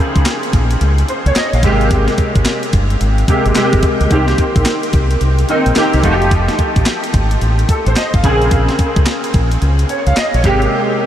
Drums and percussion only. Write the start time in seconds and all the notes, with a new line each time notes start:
0.16 kick, closed hi-hat
0.26 snare, clap, closed hi-hat
0.43 closed hi-hat
0.53 kick, closed hi-hat
0.71 closed hi-hat
0.81 closed hi-hat
0.98 closed hi-hat
1.09 closed hi-hat
1.26 closed hi-hat
1.36 snare, clap, closed hi-hat
1.53 closed hi-hat
1.63 kick, closed hi-hat
1.81 closed hi-hat
1.91 kick, closed hi-hat
2.08 snare, closed hi-hat
2.18 kick, closed hi-hat
2.35 kick, closed hi-hat
2.45 snare, clap, closed hi-hat
2.63 closed hi-hat
2.73 kick, closed hi-hat
2.90 closed hi-hat
3.01 closed hi-hat
3.18 closed hi-hat
3.28 kick, closed hi-hat
3.46 closed hi-hat
3.55 snare, clap, closed hi-hat
3.73 kick, closed hi-hat
3.83 kick, closed hi-hat
4.01 closed hi-hat
4.11 kick, closed hi-hat
4.28 snare, closed hi-hat
4.38 kick, closed hi-hat
4.56 kick, closed hi-hat
4.66 snare, clap, closed hi-hat
4.83 closed hi-hat
4.93 kick, closed hi-hat
5.11 closed hi-hat
5.21 closed hi-hat
5.39 closed hi-hat
5.49 closed hi-hat
5.66 closed hi-hat
5.76 snare, clap, closed hi-hat
5.93 closed hi-hat
6.04 kick, closed hi-hat
6.22 closed hi-hat
6.31 kick, closed hi-hat
6.48 snare, closed hi-hat
6.59 kick, closed hi-hat
6.76 kick, closed hi-hat
6.86 snare, clap, closed hi-hat
7.04 closed hi-hat
7.14 kick, closed hi-hat
7.31 closed hi-hat
7.41 closed hi-hat
7.59 closed hi-hat
7.69 kick, closed hi-hat
7.86 closed hi-hat
7.96 snare, clap, closed hi-hat
8.14 kick, closed hi-hat
8.24 kick, closed hi-hat
8.42 closed hi-hat
8.51 kick, closed hi-hat
8.69 snare, closed hi-hat
8.79 kick, closed hi-hat
8.96 kick, closed hi-hat
9.06 snare, clap, closed hi-hat
9.24 closed hi-hat
9.34 kick, closed hi-hat
9.51 closed hi-hat
9.62 closed hi-hat
9.79 closed hi-hat
9.89 closed hi-hat
10.07 closed hi-hat
10.17 snare, clap, closed hi-hat
10.34 closed hi-hat
10.44 kick, closed hi-hat
10.62 closed hi-hat